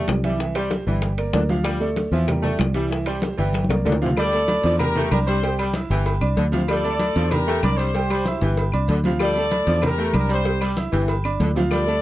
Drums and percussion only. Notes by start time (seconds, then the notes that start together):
0.08 high bongo, low bongo, high conga, high timbale, low timbale, claves
0.24 high conga, high timbale
0.40 high bongo, high conga
0.55 high bongo, high conga, high timbale, claves
0.71 high bongo, high conga, high timbale
0.87 high bongo, high conga
1.02 high bongo, high conga, high timbale
1.17 high bongo, high conga, high timbale, claves
1.33 high bongo, low bongo, high conga, high timbale, low timbale
1.49 high conga
1.65 high bongo, high timbale, claves
1.81 high conga
1.96 high bongo, high conga, high timbale
2.12 high conga
2.28 high bongo, high conga, low conga, high timbale, claves
2.44 high conga, low conga
2.59 high bongo, low bongo, high conga, high timbale, low timbale, claves
2.74 high timbale
2.90 high bongo, high conga
3.06 high bongo, high conga, high timbale, claves
3.22 high bongo, high conga, high timbale
3.38 high bongo, high conga
3.53 high bongo, high conga, high timbale
3.65 high conga
3.70 high bongo, high timbale, claves
3.75 high conga
3.86 low conga, high timbale, low timbale
3.92 low bongo
4.02 low bongo, low conga
4.17 cowbell, high conga, low agogo, claves
4.32 high conga, low agogo
4.48 cowbell, high conga, low agogo
4.63 cowbell, high conga
4.79 cowbell, high conga, low conga, low agogo, claves
4.96 high conga, low conga
5.11 cowbell, high conga, low agogo, claves
5.28 cowbell, low agogo
5.43 cowbell, high conga
5.58 cowbell, high conga, low agogo, claves
5.74 cowbell, high conga, low agogo
5.90 cowbell, high conga
6.06 cowbell, high conga, low agogo
6.21 high conga, low agogo, claves
6.37 cowbell, high conga
6.53 high conga, low agogo
6.68 cowbell, high conga, low agogo, claves
6.84 high conga, low agogo
6.99 cowbell, high conga, low agogo
7.16 cowbell, high conga
7.31 cowbell, high conga, low conga, low agogo, claves
7.47 high conga
7.63 cowbell, high conga, low agogo, claves
7.79 cowbell, low agogo
7.95 cowbell, high conga
8.10 cowbell, high conga, low agogo, claves
8.25 cowbell, high conga, low agogo
8.41 cowbell, high conga
8.57 cowbell, high conga, low agogo
8.72 high conga, low agogo, claves
8.88 cowbell, high conga
9.04 high conga, low agogo
9.19 cowbell, high conga, low agogo, claves
9.36 high conga, low agogo
9.51 cowbell, high conga, low agogo
9.67 cowbell, high conga
9.82 cowbell, high conga, low conga, low agogo, claves
10.13 cowbell, high conga, low agogo, claves
10.29 cowbell, low agogo
10.45 cowbell, high conga
10.61 cowbell, high conga, low agogo, claves
10.77 cowbell, high conga, low agogo
10.93 cowbell, high conga
11.08 cowbell, high conga, low agogo
11.24 high conga, low agogo, claves
11.40 cowbell, high conga, low timbale
11.56 high conga, low agogo
11.71 cowbell, high conga, low agogo, claves
11.88 high conga, low agogo